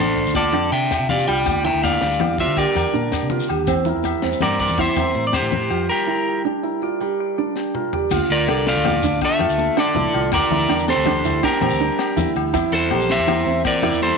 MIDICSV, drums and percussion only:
0, 0, Header, 1, 3, 480
1, 0, Start_track
1, 0, Key_signature, -1, "minor"
1, 0, Tempo, 369231
1, 1899, Time_signature, 12, 3, 24, 8
1, 18430, End_track
2, 0, Start_track
2, 0, Title_t, "Shekere"
2, 348, Note_on_c, 9, 82, 67
2, 478, Note_off_c, 9, 82, 0
2, 1186, Note_on_c, 9, 82, 95
2, 1316, Note_off_c, 9, 82, 0
2, 1540, Note_on_c, 9, 82, 78
2, 1670, Note_off_c, 9, 82, 0
2, 1907, Note_on_c, 9, 82, 103
2, 2037, Note_off_c, 9, 82, 0
2, 2159, Note_on_c, 9, 82, 31
2, 2289, Note_off_c, 9, 82, 0
2, 2390, Note_on_c, 9, 82, 95
2, 2518, Note_off_c, 9, 82, 0
2, 2518, Note_on_c, 9, 82, 31
2, 2648, Note_off_c, 9, 82, 0
2, 2751, Note_on_c, 9, 82, 70
2, 2881, Note_off_c, 9, 82, 0
2, 3583, Note_on_c, 9, 82, 81
2, 3713, Note_off_c, 9, 82, 0
2, 4061, Note_on_c, 9, 82, 83
2, 4191, Note_off_c, 9, 82, 0
2, 4421, Note_on_c, 9, 82, 71
2, 4551, Note_off_c, 9, 82, 0
2, 4776, Note_on_c, 9, 82, 89
2, 4906, Note_off_c, 9, 82, 0
2, 5014, Note_on_c, 9, 82, 30
2, 5144, Note_off_c, 9, 82, 0
2, 5252, Note_on_c, 9, 82, 87
2, 5382, Note_off_c, 9, 82, 0
2, 5622, Note_on_c, 9, 82, 70
2, 5752, Note_off_c, 9, 82, 0
2, 6086, Note_on_c, 9, 82, 68
2, 6216, Note_off_c, 9, 82, 0
2, 6449, Note_on_c, 9, 82, 91
2, 6579, Note_off_c, 9, 82, 0
2, 6928, Note_on_c, 9, 82, 80
2, 7058, Note_off_c, 9, 82, 0
2, 10541, Note_on_c, 9, 82, 104
2, 10671, Note_off_c, 9, 82, 0
2, 11264, Note_on_c, 9, 82, 31
2, 11394, Note_off_c, 9, 82, 0
2, 11507, Note_on_c, 9, 82, 31
2, 11637, Note_off_c, 9, 82, 0
2, 11734, Note_on_c, 9, 82, 105
2, 11864, Note_off_c, 9, 82, 0
2, 11988, Note_on_c, 9, 82, 31
2, 12118, Note_off_c, 9, 82, 0
2, 12341, Note_on_c, 9, 82, 78
2, 12471, Note_off_c, 9, 82, 0
2, 13426, Note_on_c, 9, 82, 99
2, 13556, Note_off_c, 9, 82, 0
2, 14025, Note_on_c, 9, 82, 77
2, 14140, Note_off_c, 9, 82, 0
2, 14140, Note_on_c, 9, 82, 30
2, 14270, Note_off_c, 9, 82, 0
2, 14380, Note_on_c, 9, 82, 29
2, 14510, Note_off_c, 9, 82, 0
2, 14618, Note_on_c, 9, 82, 98
2, 14748, Note_off_c, 9, 82, 0
2, 14854, Note_on_c, 9, 82, 30
2, 14984, Note_off_c, 9, 82, 0
2, 15214, Note_on_c, 9, 82, 72
2, 15344, Note_off_c, 9, 82, 0
2, 15823, Note_on_c, 9, 82, 97
2, 15953, Note_off_c, 9, 82, 0
2, 16308, Note_on_c, 9, 82, 99
2, 16438, Note_off_c, 9, 82, 0
2, 16916, Note_on_c, 9, 82, 76
2, 17046, Note_off_c, 9, 82, 0
2, 17750, Note_on_c, 9, 82, 29
2, 17880, Note_off_c, 9, 82, 0
2, 18107, Note_on_c, 9, 82, 79
2, 18237, Note_off_c, 9, 82, 0
2, 18430, End_track
3, 0, Start_track
3, 0, Title_t, "Drums"
3, 95, Note_on_c, 9, 64, 30
3, 208, Note_off_c, 9, 64, 0
3, 208, Note_on_c, 9, 64, 28
3, 217, Note_on_c, 9, 36, 60
3, 218, Note_on_c, 9, 42, 52
3, 338, Note_off_c, 9, 64, 0
3, 339, Note_on_c, 9, 64, 29
3, 347, Note_off_c, 9, 36, 0
3, 348, Note_off_c, 9, 42, 0
3, 444, Note_on_c, 9, 63, 95
3, 450, Note_on_c, 9, 42, 66
3, 455, Note_on_c, 9, 36, 91
3, 465, Note_on_c, 9, 68, 60
3, 469, Note_off_c, 9, 64, 0
3, 574, Note_off_c, 9, 63, 0
3, 580, Note_off_c, 9, 42, 0
3, 585, Note_off_c, 9, 36, 0
3, 595, Note_off_c, 9, 68, 0
3, 685, Note_on_c, 9, 64, 94
3, 698, Note_on_c, 9, 42, 51
3, 701, Note_on_c, 9, 68, 66
3, 815, Note_off_c, 9, 64, 0
3, 828, Note_off_c, 9, 42, 0
3, 831, Note_off_c, 9, 68, 0
3, 927, Note_on_c, 9, 64, 29
3, 933, Note_on_c, 9, 42, 49
3, 1049, Note_off_c, 9, 64, 0
3, 1049, Note_on_c, 9, 64, 30
3, 1063, Note_off_c, 9, 42, 0
3, 1179, Note_off_c, 9, 64, 0
3, 1182, Note_on_c, 9, 38, 82
3, 1182, Note_on_c, 9, 42, 64
3, 1193, Note_on_c, 9, 68, 61
3, 1294, Note_on_c, 9, 64, 29
3, 1312, Note_off_c, 9, 38, 0
3, 1312, Note_off_c, 9, 42, 0
3, 1323, Note_off_c, 9, 68, 0
3, 1417, Note_off_c, 9, 64, 0
3, 1417, Note_on_c, 9, 63, 92
3, 1417, Note_on_c, 9, 64, 91
3, 1421, Note_on_c, 9, 42, 48
3, 1547, Note_off_c, 9, 63, 0
3, 1547, Note_off_c, 9, 64, 0
3, 1551, Note_off_c, 9, 42, 0
3, 1661, Note_on_c, 9, 42, 49
3, 1665, Note_on_c, 9, 64, 30
3, 1669, Note_on_c, 9, 68, 63
3, 1791, Note_off_c, 9, 42, 0
3, 1795, Note_off_c, 9, 64, 0
3, 1799, Note_off_c, 9, 68, 0
3, 1897, Note_on_c, 9, 42, 65
3, 1898, Note_on_c, 9, 63, 97
3, 1899, Note_on_c, 9, 36, 92
3, 1900, Note_on_c, 9, 68, 68
3, 2017, Note_on_c, 9, 64, 29
3, 2027, Note_off_c, 9, 42, 0
3, 2028, Note_off_c, 9, 63, 0
3, 2029, Note_off_c, 9, 36, 0
3, 2030, Note_off_c, 9, 68, 0
3, 2137, Note_on_c, 9, 42, 45
3, 2142, Note_off_c, 9, 64, 0
3, 2142, Note_on_c, 9, 64, 92
3, 2261, Note_off_c, 9, 64, 0
3, 2261, Note_on_c, 9, 64, 29
3, 2267, Note_off_c, 9, 42, 0
3, 2378, Note_on_c, 9, 42, 44
3, 2388, Note_off_c, 9, 64, 0
3, 2388, Note_on_c, 9, 63, 101
3, 2388, Note_on_c, 9, 64, 30
3, 2389, Note_on_c, 9, 68, 69
3, 2508, Note_off_c, 9, 42, 0
3, 2514, Note_off_c, 9, 64, 0
3, 2514, Note_on_c, 9, 64, 29
3, 2518, Note_off_c, 9, 63, 0
3, 2519, Note_off_c, 9, 68, 0
3, 2617, Note_on_c, 9, 38, 93
3, 2617, Note_on_c, 9, 42, 62
3, 2644, Note_off_c, 9, 64, 0
3, 2747, Note_off_c, 9, 38, 0
3, 2747, Note_off_c, 9, 42, 0
3, 2857, Note_on_c, 9, 42, 48
3, 2860, Note_on_c, 9, 63, 92
3, 2860, Note_on_c, 9, 64, 100
3, 2871, Note_on_c, 9, 68, 68
3, 2987, Note_off_c, 9, 42, 0
3, 2987, Note_off_c, 9, 64, 0
3, 2987, Note_on_c, 9, 64, 29
3, 2990, Note_off_c, 9, 63, 0
3, 3001, Note_off_c, 9, 68, 0
3, 3099, Note_on_c, 9, 36, 62
3, 3103, Note_on_c, 9, 42, 48
3, 3117, Note_off_c, 9, 64, 0
3, 3222, Note_on_c, 9, 64, 31
3, 3229, Note_off_c, 9, 36, 0
3, 3233, Note_off_c, 9, 42, 0
3, 3335, Note_on_c, 9, 63, 84
3, 3341, Note_on_c, 9, 36, 84
3, 3344, Note_on_c, 9, 42, 64
3, 3352, Note_off_c, 9, 64, 0
3, 3353, Note_on_c, 9, 68, 65
3, 3465, Note_off_c, 9, 63, 0
3, 3471, Note_off_c, 9, 36, 0
3, 3474, Note_off_c, 9, 42, 0
3, 3483, Note_off_c, 9, 68, 0
3, 3568, Note_on_c, 9, 64, 85
3, 3587, Note_on_c, 9, 42, 49
3, 3593, Note_on_c, 9, 68, 61
3, 3698, Note_off_c, 9, 64, 0
3, 3717, Note_off_c, 9, 42, 0
3, 3723, Note_off_c, 9, 68, 0
3, 3815, Note_on_c, 9, 63, 80
3, 3815, Note_on_c, 9, 64, 27
3, 3830, Note_on_c, 9, 42, 52
3, 3945, Note_off_c, 9, 63, 0
3, 3945, Note_off_c, 9, 64, 0
3, 3947, Note_on_c, 9, 64, 28
3, 3960, Note_off_c, 9, 42, 0
3, 4057, Note_on_c, 9, 38, 89
3, 4057, Note_on_c, 9, 42, 66
3, 4070, Note_on_c, 9, 68, 58
3, 4077, Note_off_c, 9, 64, 0
3, 4182, Note_on_c, 9, 64, 25
3, 4187, Note_off_c, 9, 38, 0
3, 4187, Note_off_c, 9, 42, 0
3, 4200, Note_off_c, 9, 68, 0
3, 4288, Note_off_c, 9, 64, 0
3, 4288, Note_on_c, 9, 63, 83
3, 4288, Note_on_c, 9, 64, 88
3, 4295, Note_on_c, 9, 42, 54
3, 4415, Note_off_c, 9, 64, 0
3, 4415, Note_on_c, 9, 64, 25
3, 4418, Note_off_c, 9, 63, 0
3, 4425, Note_off_c, 9, 42, 0
3, 4528, Note_on_c, 9, 42, 53
3, 4544, Note_off_c, 9, 64, 0
3, 4544, Note_on_c, 9, 64, 27
3, 4547, Note_on_c, 9, 68, 61
3, 4658, Note_off_c, 9, 42, 0
3, 4674, Note_off_c, 9, 64, 0
3, 4677, Note_off_c, 9, 68, 0
3, 4770, Note_on_c, 9, 42, 72
3, 4777, Note_on_c, 9, 36, 86
3, 4778, Note_on_c, 9, 63, 82
3, 4783, Note_on_c, 9, 68, 67
3, 4898, Note_on_c, 9, 64, 26
3, 4900, Note_off_c, 9, 42, 0
3, 4907, Note_off_c, 9, 36, 0
3, 4908, Note_off_c, 9, 63, 0
3, 4913, Note_off_c, 9, 68, 0
3, 5006, Note_off_c, 9, 64, 0
3, 5006, Note_on_c, 9, 64, 85
3, 5014, Note_on_c, 9, 42, 48
3, 5136, Note_off_c, 9, 64, 0
3, 5136, Note_on_c, 9, 64, 28
3, 5144, Note_off_c, 9, 42, 0
3, 5250, Note_off_c, 9, 64, 0
3, 5250, Note_on_c, 9, 63, 89
3, 5250, Note_on_c, 9, 64, 26
3, 5258, Note_on_c, 9, 42, 48
3, 5265, Note_on_c, 9, 68, 67
3, 5380, Note_off_c, 9, 63, 0
3, 5380, Note_off_c, 9, 64, 0
3, 5383, Note_on_c, 9, 64, 28
3, 5388, Note_off_c, 9, 42, 0
3, 5395, Note_off_c, 9, 68, 0
3, 5490, Note_on_c, 9, 38, 88
3, 5490, Note_on_c, 9, 42, 69
3, 5513, Note_off_c, 9, 64, 0
3, 5620, Note_off_c, 9, 38, 0
3, 5620, Note_off_c, 9, 42, 0
3, 5726, Note_on_c, 9, 42, 46
3, 5726, Note_on_c, 9, 63, 87
3, 5726, Note_on_c, 9, 64, 86
3, 5743, Note_on_c, 9, 68, 70
3, 5855, Note_off_c, 9, 64, 0
3, 5855, Note_on_c, 9, 64, 27
3, 5856, Note_off_c, 9, 42, 0
3, 5856, Note_off_c, 9, 63, 0
3, 5873, Note_off_c, 9, 68, 0
3, 5966, Note_on_c, 9, 42, 46
3, 5972, Note_on_c, 9, 36, 64
3, 5984, Note_off_c, 9, 64, 0
3, 5984, Note_on_c, 9, 64, 26
3, 6096, Note_off_c, 9, 42, 0
3, 6101, Note_off_c, 9, 64, 0
3, 6101, Note_on_c, 9, 64, 30
3, 6102, Note_off_c, 9, 36, 0
3, 6207, Note_on_c, 9, 42, 64
3, 6213, Note_on_c, 9, 36, 91
3, 6219, Note_on_c, 9, 63, 88
3, 6223, Note_on_c, 9, 68, 59
3, 6231, Note_off_c, 9, 64, 0
3, 6337, Note_off_c, 9, 42, 0
3, 6343, Note_off_c, 9, 36, 0
3, 6349, Note_off_c, 9, 63, 0
3, 6353, Note_off_c, 9, 68, 0
3, 6447, Note_on_c, 9, 42, 46
3, 6454, Note_on_c, 9, 64, 86
3, 6460, Note_on_c, 9, 68, 63
3, 6577, Note_off_c, 9, 42, 0
3, 6584, Note_off_c, 9, 64, 0
3, 6590, Note_off_c, 9, 68, 0
3, 6693, Note_on_c, 9, 63, 86
3, 6693, Note_on_c, 9, 64, 27
3, 6694, Note_on_c, 9, 42, 46
3, 6823, Note_off_c, 9, 63, 0
3, 6823, Note_off_c, 9, 64, 0
3, 6823, Note_on_c, 9, 64, 30
3, 6824, Note_off_c, 9, 42, 0
3, 6928, Note_on_c, 9, 38, 86
3, 6928, Note_on_c, 9, 42, 64
3, 6934, Note_on_c, 9, 68, 61
3, 6953, Note_off_c, 9, 64, 0
3, 7058, Note_off_c, 9, 38, 0
3, 7058, Note_off_c, 9, 42, 0
3, 7064, Note_off_c, 9, 68, 0
3, 7172, Note_on_c, 9, 42, 48
3, 7178, Note_on_c, 9, 63, 90
3, 7178, Note_on_c, 9, 64, 95
3, 7302, Note_off_c, 9, 42, 0
3, 7306, Note_off_c, 9, 64, 0
3, 7306, Note_on_c, 9, 64, 28
3, 7308, Note_off_c, 9, 63, 0
3, 7416, Note_on_c, 9, 68, 62
3, 7421, Note_on_c, 9, 42, 52
3, 7436, Note_off_c, 9, 64, 0
3, 7546, Note_off_c, 9, 68, 0
3, 7551, Note_off_c, 9, 42, 0
3, 9823, Note_on_c, 9, 38, 49
3, 9953, Note_off_c, 9, 38, 0
3, 10072, Note_on_c, 9, 47, 60
3, 10202, Note_off_c, 9, 47, 0
3, 10310, Note_on_c, 9, 43, 79
3, 10440, Note_off_c, 9, 43, 0
3, 10540, Note_on_c, 9, 49, 99
3, 10547, Note_on_c, 9, 36, 104
3, 10547, Note_on_c, 9, 63, 89
3, 10547, Note_on_c, 9, 68, 73
3, 10670, Note_off_c, 9, 49, 0
3, 10677, Note_off_c, 9, 36, 0
3, 10677, Note_off_c, 9, 63, 0
3, 10677, Note_off_c, 9, 68, 0
3, 10788, Note_on_c, 9, 51, 53
3, 10918, Note_off_c, 9, 51, 0
3, 11028, Note_on_c, 9, 63, 91
3, 11028, Note_on_c, 9, 64, 28
3, 11030, Note_on_c, 9, 68, 73
3, 11034, Note_on_c, 9, 51, 54
3, 11158, Note_off_c, 9, 63, 0
3, 11158, Note_off_c, 9, 64, 0
3, 11160, Note_off_c, 9, 68, 0
3, 11164, Note_off_c, 9, 51, 0
3, 11263, Note_on_c, 9, 64, 30
3, 11268, Note_on_c, 9, 38, 97
3, 11268, Note_on_c, 9, 51, 76
3, 11388, Note_off_c, 9, 64, 0
3, 11388, Note_on_c, 9, 64, 27
3, 11398, Note_off_c, 9, 38, 0
3, 11398, Note_off_c, 9, 51, 0
3, 11502, Note_on_c, 9, 68, 70
3, 11505, Note_off_c, 9, 64, 0
3, 11505, Note_on_c, 9, 63, 98
3, 11505, Note_on_c, 9, 64, 97
3, 11516, Note_on_c, 9, 51, 58
3, 11632, Note_off_c, 9, 68, 0
3, 11635, Note_off_c, 9, 63, 0
3, 11635, Note_off_c, 9, 64, 0
3, 11646, Note_off_c, 9, 51, 0
3, 11744, Note_on_c, 9, 51, 56
3, 11874, Note_off_c, 9, 51, 0
3, 11974, Note_on_c, 9, 63, 92
3, 11976, Note_on_c, 9, 51, 74
3, 11982, Note_on_c, 9, 36, 99
3, 11983, Note_on_c, 9, 68, 68
3, 12094, Note_on_c, 9, 64, 27
3, 12104, Note_off_c, 9, 63, 0
3, 12106, Note_off_c, 9, 51, 0
3, 12112, Note_off_c, 9, 36, 0
3, 12113, Note_off_c, 9, 68, 0
3, 12209, Note_off_c, 9, 64, 0
3, 12209, Note_on_c, 9, 64, 99
3, 12221, Note_on_c, 9, 68, 74
3, 12227, Note_on_c, 9, 51, 59
3, 12339, Note_off_c, 9, 64, 0
3, 12351, Note_off_c, 9, 68, 0
3, 12357, Note_off_c, 9, 51, 0
3, 12455, Note_on_c, 9, 63, 95
3, 12455, Note_on_c, 9, 64, 30
3, 12466, Note_on_c, 9, 51, 57
3, 12585, Note_off_c, 9, 63, 0
3, 12585, Note_off_c, 9, 64, 0
3, 12596, Note_off_c, 9, 51, 0
3, 12699, Note_on_c, 9, 68, 67
3, 12702, Note_on_c, 9, 38, 96
3, 12702, Note_on_c, 9, 51, 75
3, 12820, Note_on_c, 9, 64, 30
3, 12829, Note_off_c, 9, 68, 0
3, 12832, Note_off_c, 9, 38, 0
3, 12832, Note_off_c, 9, 51, 0
3, 12931, Note_off_c, 9, 64, 0
3, 12931, Note_on_c, 9, 63, 98
3, 12931, Note_on_c, 9, 64, 97
3, 12948, Note_on_c, 9, 51, 59
3, 13061, Note_off_c, 9, 63, 0
3, 13061, Note_off_c, 9, 64, 0
3, 13078, Note_off_c, 9, 51, 0
3, 13186, Note_on_c, 9, 68, 69
3, 13187, Note_on_c, 9, 51, 52
3, 13316, Note_off_c, 9, 68, 0
3, 13317, Note_off_c, 9, 51, 0
3, 13414, Note_on_c, 9, 63, 109
3, 13426, Note_on_c, 9, 36, 100
3, 13427, Note_on_c, 9, 68, 72
3, 13430, Note_on_c, 9, 51, 76
3, 13544, Note_off_c, 9, 63, 0
3, 13556, Note_off_c, 9, 36, 0
3, 13557, Note_off_c, 9, 68, 0
3, 13560, Note_off_c, 9, 51, 0
3, 13658, Note_on_c, 9, 64, 100
3, 13676, Note_on_c, 9, 51, 54
3, 13788, Note_off_c, 9, 64, 0
3, 13806, Note_off_c, 9, 51, 0
3, 13896, Note_on_c, 9, 63, 105
3, 13896, Note_on_c, 9, 64, 32
3, 13901, Note_on_c, 9, 68, 75
3, 13909, Note_on_c, 9, 38, 28
3, 13909, Note_on_c, 9, 51, 54
3, 14026, Note_off_c, 9, 63, 0
3, 14026, Note_off_c, 9, 64, 0
3, 14031, Note_off_c, 9, 68, 0
3, 14039, Note_off_c, 9, 38, 0
3, 14039, Note_off_c, 9, 51, 0
3, 14148, Note_on_c, 9, 38, 97
3, 14148, Note_on_c, 9, 51, 69
3, 14259, Note_on_c, 9, 64, 30
3, 14278, Note_off_c, 9, 38, 0
3, 14278, Note_off_c, 9, 51, 0
3, 14372, Note_off_c, 9, 64, 0
3, 14372, Note_on_c, 9, 63, 107
3, 14372, Note_on_c, 9, 64, 104
3, 14381, Note_on_c, 9, 51, 52
3, 14383, Note_on_c, 9, 68, 74
3, 14502, Note_off_c, 9, 63, 0
3, 14502, Note_off_c, 9, 64, 0
3, 14511, Note_off_c, 9, 51, 0
3, 14513, Note_off_c, 9, 68, 0
3, 14631, Note_on_c, 9, 51, 57
3, 14738, Note_on_c, 9, 64, 34
3, 14761, Note_off_c, 9, 51, 0
3, 14860, Note_on_c, 9, 68, 70
3, 14862, Note_on_c, 9, 36, 94
3, 14862, Note_on_c, 9, 63, 93
3, 14865, Note_on_c, 9, 51, 66
3, 14868, Note_off_c, 9, 64, 0
3, 14978, Note_on_c, 9, 64, 31
3, 14990, Note_off_c, 9, 68, 0
3, 14992, Note_off_c, 9, 36, 0
3, 14992, Note_off_c, 9, 63, 0
3, 14995, Note_off_c, 9, 51, 0
3, 15093, Note_off_c, 9, 64, 0
3, 15093, Note_on_c, 9, 64, 101
3, 15102, Note_on_c, 9, 68, 74
3, 15107, Note_on_c, 9, 51, 51
3, 15223, Note_off_c, 9, 64, 0
3, 15232, Note_off_c, 9, 68, 0
3, 15237, Note_off_c, 9, 51, 0
3, 15347, Note_on_c, 9, 51, 55
3, 15477, Note_off_c, 9, 51, 0
3, 15584, Note_on_c, 9, 68, 72
3, 15588, Note_on_c, 9, 38, 90
3, 15588, Note_on_c, 9, 51, 74
3, 15710, Note_on_c, 9, 64, 30
3, 15714, Note_off_c, 9, 68, 0
3, 15718, Note_off_c, 9, 38, 0
3, 15718, Note_off_c, 9, 51, 0
3, 15822, Note_off_c, 9, 64, 0
3, 15822, Note_on_c, 9, 63, 95
3, 15822, Note_on_c, 9, 64, 95
3, 15832, Note_on_c, 9, 51, 59
3, 15952, Note_off_c, 9, 63, 0
3, 15952, Note_off_c, 9, 64, 0
3, 15962, Note_off_c, 9, 51, 0
3, 16067, Note_on_c, 9, 51, 56
3, 16075, Note_on_c, 9, 68, 68
3, 16197, Note_off_c, 9, 51, 0
3, 16205, Note_off_c, 9, 68, 0
3, 16298, Note_on_c, 9, 51, 80
3, 16300, Note_on_c, 9, 63, 97
3, 16301, Note_on_c, 9, 36, 96
3, 16303, Note_on_c, 9, 68, 73
3, 16428, Note_off_c, 9, 51, 0
3, 16430, Note_off_c, 9, 63, 0
3, 16431, Note_off_c, 9, 36, 0
3, 16433, Note_off_c, 9, 68, 0
3, 16538, Note_on_c, 9, 51, 56
3, 16538, Note_on_c, 9, 64, 94
3, 16668, Note_off_c, 9, 51, 0
3, 16668, Note_off_c, 9, 64, 0
3, 16779, Note_on_c, 9, 51, 57
3, 16780, Note_on_c, 9, 68, 76
3, 16782, Note_on_c, 9, 63, 102
3, 16782, Note_on_c, 9, 64, 31
3, 16909, Note_off_c, 9, 51, 0
3, 16910, Note_off_c, 9, 68, 0
3, 16912, Note_off_c, 9, 63, 0
3, 16912, Note_off_c, 9, 64, 0
3, 17009, Note_on_c, 9, 64, 32
3, 17026, Note_on_c, 9, 38, 95
3, 17026, Note_on_c, 9, 51, 75
3, 17139, Note_off_c, 9, 64, 0
3, 17139, Note_on_c, 9, 64, 30
3, 17156, Note_off_c, 9, 38, 0
3, 17156, Note_off_c, 9, 51, 0
3, 17262, Note_off_c, 9, 64, 0
3, 17262, Note_on_c, 9, 63, 104
3, 17262, Note_on_c, 9, 64, 103
3, 17264, Note_on_c, 9, 68, 75
3, 17268, Note_on_c, 9, 51, 56
3, 17392, Note_off_c, 9, 63, 0
3, 17392, Note_off_c, 9, 64, 0
3, 17394, Note_off_c, 9, 68, 0
3, 17398, Note_off_c, 9, 51, 0
3, 17514, Note_on_c, 9, 51, 57
3, 17617, Note_on_c, 9, 64, 31
3, 17644, Note_off_c, 9, 51, 0
3, 17735, Note_on_c, 9, 63, 96
3, 17743, Note_on_c, 9, 68, 66
3, 17744, Note_on_c, 9, 36, 94
3, 17747, Note_off_c, 9, 64, 0
3, 17753, Note_on_c, 9, 51, 71
3, 17865, Note_off_c, 9, 63, 0
3, 17873, Note_off_c, 9, 68, 0
3, 17874, Note_off_c, 9, 36, 0
3, 17883, Note_off_c, 9, 51, 0
3, 17974, Note_on_c, 9, 64, 100
3, 17981, Note_on_c, 9, 68, 70
3, 17994, Note_on_c, 9, 51, 51
3, 18104, Note_off_c, 9, 64, 0
3, 18111, Note_off_c, 9, 68, 0
3, 18124, Note_off_c, 9, 51, 0
3, 18222, Note_on_c, 9, 63, 98
3, 18222, Note_on_c, 9, 64, 31
3, 18225, Note_on_c, 9, 51, 50
3, 18352, Note_off_c, 9, 63, 0
3, 18352, Note_off_c, 9, 64, 0
3, 18355, Note_off_c, 9, 51, 0
3, 18430, End_track
0, 0, End_of_file